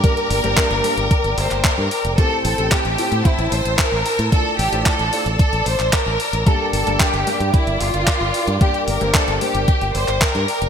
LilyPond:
<<
  \new Staff \with { instrumentName = "String section" } { \time 4/4 \key g \dorian \tempo 4 = 112 << { <d'' g'' d'''>1 | <a'' e'''>1~ | <a'' e'''>1 | <d'' g'' d'''>1~ |
<d'' g'' d'''>1 | } \\ { bes1 | c''1 | d''1 | bes'1~ |
bes'1 | } >> }
  \new Staff \with { instrumentName = "Violin section" } { \time 4/4 \key g \dorian bes'2~ bes'8 c''8 bes'4 | a'8 a'8 g'4 e'8 c''8 bes'4 | a'8 g'8 a'4 a'8 c''8 bes'4 | a'8 a'8 g'4 e'8 f'4. |
g'8 bes'8 a'8 g'4 c''8 bes'4 | }
  \new Staff \with { instrumentName = "Grand piano" } { \time 4/4 \key g \dorian <g, bes d' g' bes'>8. <g, bes d' g' c''>8. <g, bes d' g' c''>16 r2 r16 | <a, c' e' g' a'>8. <a, c' e' g' a'>8. <a, c' e' g' a''>2~ <a, c' e' g' a''>8 | <a d' e' f' a'>8. <a d' e' f' c''>8. <a d' e' f' c''>16 r2 r16 | <g, bes d' g' bes'>8. <g, bes d' g' bes'>8. <g, bes d' g' bes'>2~ <g, bes d' g' bes'>8 |
<g, bes d' g' bes'>8. <g, bes d' g' c''>8. <g, bes d' g' c''>16 r2 r16 | }
  \new Staff \with { instrumentName = "Fingered electric bass" } { \clef bass \time 4/4 \key g \dorian r8 g,,16 g,,16 r16 g,,16 r16 g,,16 r16 g,,16 g,,16 g,,16 r16 g,16 r16 f,,16 | r8 a,,16 a,,16 r16 a,,16 r16 a,16 r16 a,,16 a,,16 a,,16 r16 a,,16 r16 a,16 | r8 a,,16 a,,16 r16 a,,16 r16 a,,16 r16 a,,16 a,,16 a,,16 r16 a,,16 r16 a,,16 | r8 g,,16 g,,16 r16 g,,16 r16 g,16 r16 g,,16 g,,16 g,,16 r16 g,,16 r16 g,16 |
r8 g,,16 g,,16 r16 g,,16 r16 g,,16 r16 g,,16 g,,16 g,,16 r16 g,16 r16 f,,16 | }
  \new DrumStaff \with { instrumentName = "Drums" } \drummode { \time 4/4 <hh bd>16 hh16 hho16 hh16 <hc hh bd>16 hh16 hho16 hh16 <hh bd>16 hh16 hho16 <hc hh>16 <hc hh bd>8 hho16 hh16 | <hh bd>8 hho16 hh16 <hc hh bd>16 hh16 hho16 hh16 <hh bd>16 hh16 hho16 hh16 <hc hh bd>8 hho16 hh16 | <hh bd>8 hho16 hh16 <hc hh bd>16 hh16 hho16 hh16 <hh bd>16 hh16 hho16 <hc hh>16 <hc hh bd>8 hho16 hh16 | <hh bd>8 hho16 hh16 <hc hh bd>16 hh16 hho16 hh16 <hh bd>16 hh16 hho16 hh16 <hc hh bd>8 hho16 hh16 |
<hh bd>16 hh16 hho16 hh16 <hc hh bd>16 hh16 hho16 hh16 <hh bd>16 hh16 hho16 <hc hh>16 <hc hh bd>16 hh16 hho16 hh16 | }
>>